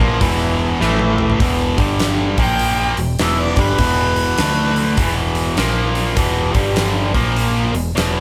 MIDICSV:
0, 0, Header, 1, 6, 480
1, 0, Start_track
1, 0, Tempo, 595829
1, 1135, Time_signature, 4, 2, 24, 8
1, 6608, End_track
2, 0, Start_track
2, 0, Title_t, "Harmonica"
2, 0, Program_c, 0, 22
2, 1954, Note_on_c, 0, 79, 92
2, 2396, Note_off_c, 0, 79, 0
2, 2590, Note_on_c, 0, 76, 79
2, 2738, Note_on_c, 0, 74, 90
2, 2750, Note_off_c, 0, 76, 0
2, 2903, Note_on_c, 0, 71, 98
2, 2916, Note_off_c, 0, 74, 0
2, 4307, Note_off_c, 0, 71, 0
2, 6608, End_track
3, 0, Start_track
3, 0, Title_t, "Tonewheel organ"
3, 0, Program_c, 1, 16
3, 3, Note_on_c, 1, 59, 79
3, 10, Note_on_c, 1, 68, 91
3, 12, Note_on_c, 1, 64, 75
3, 559, Note_off_c, 1, 59, 0
3, 563, Note_off_c, 1, 68, 0
3, 564, Note_off_c, 1, 64, 0
3, 668, Note_on_c, 1, 64, 90
3, 669, Note_on_c, 1, 57, 94
3, 671, Note_on_c, 1, 69, 108
3, 1077, Note_off_c, 1, 57, 0
3, 1077, Note_off_c, 1, 64, 0
3, 1078, Note_off_c, 1, 69, 0
3, 6608, End_track
4, 0, Start_track
4, 0, Title_t, "Distorted electric guitar"
4, 0, Program_c, 2, 30
4, 0, Note_on_c, 2, 46, 95
4, 0, Note_on_c, 2, 53, 92
4, 0, Note_on_c, 2, 58, 96
4, 161, Note_off_c, 2, 46, 0
4, 163, Note_off_c, 2, 53, 0
4, 164, Note_off_c, 2, 58, 0
4, 167, Note_on_c, 2, 40, 91
4, 172, Note_on_c, 2, 47, 98
4, 172, Note_on_c, 2, 52, 105
4, 639, Note_off_c, 2, 52, 0
4, 644, Note_off_c, 2, 47, 0
4, 646, Note_off_c, 2, 40, 0
4, 647, Note_on_c, 2, 45, 83
4, 649, Note_on_c, 2, 52, 94
4, 652, Note_on_c, 2, 57, 96
4, 1125, Note_off_c, 2, 52, 0
4, 1126, Note_off_c, 2, 45, 0
4, 1128, Note_off_c, 2, 57, 0
4, 1128, Note_on_c, 2, 40, 85
4, 1131, Note_on_c, 2, 47, 91
4, 1135, Note_on_c, 2, 52, 90
4, 1428, Note_off_c, 2, 40, 0
4, 1429, Note_off_c, 2, 47, 0
4, 1431, Note_off_c, 2, 52, 0
4, 1431, Note_on_c, 2, 43, 85
4, 1437, Note_on_c, 2, 50, 94
4, 1437, Note_on_c, 2, 55, 95
4, 1907, Note_off_c, 2, 43, 0
4, 1910, Note_off_c, 2, 50, 0
4, 1910, Note_off_c, 2, 55, 0
4, 1919, Note_on_c, 2, 46, 93
4, 1922, Note_on_c, 2, 53, 88
4, 1925, Note_on_c, 2, 58, 90
4, 2391, Note_off_c, 2, 46, 0
4, 2392, Note_off_c, 2, 53, 0
4, 2394, Note_off_c, 2, 58, 0
4, 2402, Note_on_c, 2, 40, 57
4, 2404, Note_on_c, 2, 47, 61
4, 2542, Note_off_c, 2, 40, 0
4, 2542, Note_off_c, 2, 47, 0
4, 2577, Note_on_c, 2, 40, 80
4, 2578, Note_on_c, 2, 52, 91
4, 2580, Note_on_c, 2, 47, 79
4, 2873, Note_off_c, 2, 40, 0
4, 2873, Note_off_c, 2, 52, 0
4, 2874, Note_off_c, 2, 47, 0
4, 2883, Note_on_c, 2, 43, 89
4, 2887, Note_on_c, 2, 50, 87
4, 2890, Note_on_c, 2, 55, 108
4, 3052, Note_off_c, 2, 43, 0
4, 3053, Note_off_c, 2, 50, 0
4, 3055, Note_off_c, 2, 55, 0
4, 3055, Note_on_c, 2, 40, 100
4, 3059, Note_on_c, 2, 47, 86
4, 3060, Note_on_c, 2, 52, 104
4, 3530, Note_off_c, 2, 40, 0
4, 3532, Note_off_c, 2, 47, 0
4, 3533, Note_off_c, 2, 52, 0
4, 3535, Note_on_c, 2, 50, 88
4, 3540, Note_on_c, 2, 57, 98
4, 3542, Note_on_c, 2, 62, 94
4, 4010, Note_off_c, 2, 50, 0
4, 4012, Note_off_c, 2, 57, 0
4, 4012, Note_on_c, 2, 40, 88
4, 4014, Note_off_c, 2, 62, 0
4, 4014, Note_on_c, 2, 47, 98
4, 4017, Note_on_c, 2, 52, 94
4, 4485, Note_off_c, 2, 47, 0
4, 4488, Note_on_c, 2, 46, 82
4, 4489, Note_off_c, 2, 40, 0
4, 4491, Note_off_c, 2, 52, 0
4, 4494, Note_on_c, 2, 53, 92
4, 4495, Note_on_c, 2, 58, 92
4, 4964, Note_off_c, 2, 46, 0
4, 4966, Note_on_c, 2, 40, 83
4, 4967, Note_on_c, 2, 47, 103
4, 4968, Note_off_c, 2, 53, 0
4, 4970, Note_off_c, 2, 58, 0
4, 4971, Note_on_c, 2, 52, 97
4, 5268, Note_off_c, 2, 40, 0
4, 5268, Note_on_c, 2, 43, 86
4, 5273, Note_off_c, 2, 47, 0
4, 5273, Note_on_c, 2, 50, 93
4, 5278, Note_off_c, 2, 52, 0
4, 5278, Note_on_c, 2, 55, 112
4, 5744, Note_off_c, 2, 43, 0
4, 5745, Note_off_c, 2, 50, 0
4, 5749, Note_off_c, 2, 55, 0
4, 5749, Note_on_c, 2, 46, 90
4, 5752, Note_on_c, 2, 53, 93
4, 5757, Note_on_c, 2, 58, 104
4, 6224, Note_off_c, 2, 46, 0
4, 6226, Note_off_c, 2, 53, 0
4, 6228, Note_off_c, 2, 58, 0
4, 6228, Note_on_c, 2, 40, 53
4, 6232, Note_on_c, 2, 47, 67
4, 6373, Note_off_c, 2, 40, 0
4, 6375, Note_off_c, 2, 47, 0
4, 6406, Note_on_c, 2, 40, 85
4, 6409, Note_on_c, 2, 47, 87
4, 6409, Note_on_c, 2, 52, 96
4, 6608, Note_off_c, 2, 40, 0
4, 6608, Note_off_c, 2, 47, 0
4, 6608, Note_off_c, 2, 52, 0
4, 6608, End_track
5, 0, Start_track
5, 0, Title_t, "Fingered electric bass"
5, 0, Program_c, 3, 33
5, 0, Note_on_c, 3, 34, 95
5, 161, Note_off_c, 3, 34, 0
5, 168, Note_on_c, 3, 28, 92
5, 619, Note_off_c, 3, 28, 0
5, 650, Note_on_c, 3, 33, 90
5, 1100, Note_off_c, 3, 33, 0
5, 1128, Note_on_c, 3, 28, 84
5, 1415, Note_off_c, 3, 28, 0
5, 1434, Note_on_c, 3, 31, 81
5, 1885, Note_off_c, 3, 31, 0
5, 1917, Note_on_c, 3, 34, 82
5, 2367, Note_off_c, 3, 34, 0
5, 2401, Note_on_c, 3, 28, 77
5, 2564, Note_off_c, 3, 28, 0
5, 2575, Note_on_c, 3, 28, 76
5, 2859, Note_off_c, 3, 28, 0
5, 2877, Note_on_c, 3, 31, 98
5, 3041, Note_off_c, 3, 31, 0
5, 3047, Note_on_c, 3, 28, 90
5, 3499, Note_off_c, 3, 28, 0
5, 3536, Note_on_c, 3, 38, 89
5, 3984, Note_off_c, 3, 38, 0
5, 4009, Note_on_c, 3, 28, 89
5, 4460, Note_off_c, 3, 28, 0
5, 4495, Note_on_c, 3, 34, 86
5, 4943, Note_off_c, 3, 34, 0
5, 4968, Note_on_c, 3, 28, 89
5, 5255, Note_off_c, 3, 28, 0
5, 5275, Note_on_c, 3, 31, 95
5, 5724, Note_off_c, 3, 31, 0
5, 5755, Note_on_c, 3, 34, 81
5, 6204, Note_off_c, 3, 34, 0
5, 6240, Note_on_c, 3, 28, 75
5, 6402, Note_off_c, 3, 28, 0
5, 6418, Note_on_c, 3, 28, 83
5, 6608, Note_off_c, 3, 28, 0
5, 6608, End_track
6, 0, Start_track
6, 0, Title_t, "Drums"
6, 169, Note_on_c, 9, 36, 100
6, 171, Note_on_c, 9, 46, 65
6, 250, Note_off_c, 9, 36, 0
6, 251, Note_off_c, 9, 46, 0
6, 654, Note_on_c, 9, 38, 58
6, 735, Note_off_c, 9, 38, 0
6, 801, Note_on_c, 9, 48, 67
6, 881, Note_off_c, 9, 48, 0
6, 954, Note_on_c, 9, 45, 84
6, 1034, Note_off_c, 9, 45, 0
6, 1044, Note_on_c, 9, 43, 78
6, 1125, Note_off_c, 9, 43, 0
6, 1130, Note_on_c, 9, 36, 102
6, 1131, Note_on_c, 9, 46, 73
6, 1210, Note_off_c, 9, 36, 0
6, 1211, Note_off_c, 9, 46, 0
6, 1435, Note_on_c, 9, 36, 99
6, 1435, Note_on_c, 9, 46, 49
6, 1515, Note_off_c, 9, 36, 0
6, 1516, Note_off_c, 9, 46, 0
6, 1607, Note_on_c, 9, 46, 74
6, 1613, Note_on_c, 9, 38, 101
6, 1687, Note_off_c, 9, 46, 0
6, 1694, Note_off_c, 9, 38, 0
6, 1915, Note_on_c, 9, 46, 49
6, 1916, Note_on_c, 9, 36, 99
6, 1996, Note_off_c, 9, 46, 0
6, 1997, Note_off_c, 9, 36, 0
6, 2089, Note_on_c, 9, 46, 77
6, 2169, Note_off_c, 9, 46, 0
6, 2394, Note_on_c, 9, 46, 55
6, 2474, Note_off_c, 9, 46, 0
6, 2567, Note_on_c, 9, 46, 76
6, 2574, Note_on_c, 9, 38, 108
6, 2648, Note_off_c, 9, 46, 0
6, 2654, Note_off_c, 9, 38, 0
6, 2869, Note_on_c, 9, 46, 53
6, 2876, Note_on_c, 9, 36, 104
6, 2950, Note_off_c, 9, 46, 0
6, 2956, Note_off_c, 9, 36, 0
6, 3048, Note_on_c, 9, 46, 73
6, 3050, Note_on_c, 9, 36, 102
6, 3128, Note_off_c, 9, 46, 0
6, 3131, Note_off_c, 9, 36, 0
6, 3352, Note_on_c, 9, 46, 53
6, 3433, Note_off_c, 9, 46, 0
6, 3526, Note_on_c, 9, 46, 78
6, 3532, Note_on_c, 9, 38, 104
6, 3606, Note_off_c, 9, 46, 0
6, 3613, Note_off_c, 9, 38, 0
6, 3836, Note_on_c, 9, 46, 58
6, 3916, Note_off_c, 9, 46, 0
6, 4006, Note_on_c, 9, 46, 80
6, 4009, Note_on_c, 9, 36, 105
6, 4086, Note_off_c, 9, 46, 0
6, 4090, Note_off_c, 9, 36, 0
6, 4311, Note_on_c, 9, 46, 60
6, 4391, Note_off_c, 9, 46, 0
6, 4487, Note_on_c, 9, 46, 73
6, 4493, Note_on_c, 9, 38, 108
6, 4567, Note_off_c, 9, 46, 0
6, 4574, Note_off_c, 9, 38, 0
6, 4795, Note_on_c, 9, 46, 57
6, 4876, Note_off_c, 9, 46, 0
6, 4967, Note_on_c, 9, 46, 70
6, 4969, Note_on_c, 9, 36, 100
6, 5048, Note_off_c, 9, 46, 0
6, 5050, Note_off_c, 9, 36, 0
6, 5272, Note_on_c, 9, 46, 53
6, 5274, Note_on_c, 9, 36, 94
6, 5352, Note_off_c, 9, 46, 0
6, 5355, Note_off_c, 9, 36, 0
6, 5446, Note_on_c, 9, 46, 74
6, 5452, Note_on_c, 9, 38, 106
6, 5527, Note_off_c, 9, 46, 0
6, 5533, Note_off_c, 9, 38, 0
6, 5756, Note_on_c, 9, 36, 95
6, 5760, Note_on_c, 9, 46, 53
6, 5836, Note_off_c, 9, 36, 0
6, 5841, Note_off_c, 9, 46, 0
6, 5933, Note_on_c, 9, 46, 70
6, 6014, Note_off_c, 9, 46, 0
6, 6241, Note_on_c, 9, 46, 49
6, 6321, Note_off_c, 9, 46, 0
6, 6421, Note_on_c, 9, 46, 69
6, 6427, Note_on_c, 9, 38, 110
6, 6501, Note_off_c, 9, 46, 0
6, 6508, Note_off_c, 9, 38, 0
6, 6608, End_track
0, 0, End_of_file